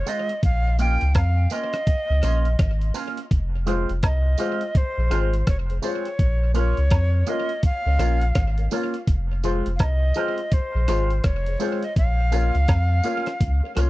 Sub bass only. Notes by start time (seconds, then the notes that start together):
0.43 A#1
1.02 C#2
1.15 F2
2.10 C#2
2.23 A#1
2.59 G#1
3.31 F1
3.90 F1
4.03 C2
4.98 A#1
5.11 G#1
5.47 F1
6.19 A#1
6.78 C#2
6.91 F2
7.86 C#2
7.99 A#1
8.36 G#1
9.08 F1
9.67 F1
9.80 C2
10.75 A#1
10.88 G#1
11.24 F1
11.96 A#1
12.55 C#2
12.69 F2
13.41 C#2
13.77 C2